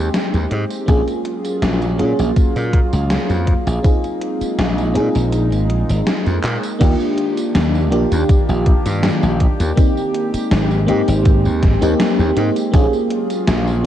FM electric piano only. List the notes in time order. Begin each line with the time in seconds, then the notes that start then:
Already playing: A#3 C4 D#4 G4
0.86 A#3 C#4 F4 G#4
1.98 A#3 C#4 F4 G#4
3.83 C4 D#4 F4 G#4
4.94 C4 D#4 F4 G#4
6.79 A#3 D4 F4 G4
7.91 A#3 D4 F4 G4
9.76 A#3 C4 D#4 G4
10.87 A#3 C4 D#4 G4
11.81 A#3 C4 D#4 G4
12.35 A#3 C4 D#4 G4
12.72 A#3 C#4 F4 G#4